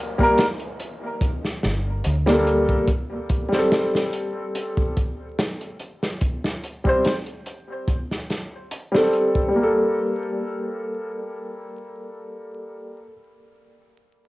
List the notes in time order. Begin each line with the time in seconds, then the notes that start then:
Already playing: G3 A#3 A#4, downlifter
0.18 G3 A#3, kick
0.23 A#4
0.38 snare, closed hi-hat
0.60 closed hi-hat
0.80 closed hi-hat
1.21 kick, closed hi-hat
1.45 snare
1.63 G1, snare, closed hi-hat
2.04 D2, closed hi-hat
2.26 G3 A#3, snare
2.31 A4
2.47 closed hi-hat
2.69 kick
2.88 kick, closed hi-hat
3.29 kick, closed hi-hat
3.49 G3, snare
3.54 C4
3.58 A4
3.72 snare, closed hi-hat
3.95 snare
4.13 closed hi-hat
4.55 closed hi-hat
4.77 kick
4.97 kick, closed hi-hat
5.39 snare, closed hi-hat
5.61 closed hi-hat
5.80 closed hi-hat
6.03 snare
6.21 kick, closed hi-hat
6.44 snare
6.64 closed hi-hat
6.84 G3 C4, kick
6.89 C5
7.05 snare, closed hi-hat
7.26 closed hi-hat
7.46 closed hi-hat
7.88 kick, closed hi-hat
8.11 snare
8.30 snare, closed hi-hat
8.71 closed hi-hat
8.92 G3 C4, snare
8.96 A4
9.13 closed hi-hat
9.35 kick
9.48 G3
9.56 A#3
9.63 A4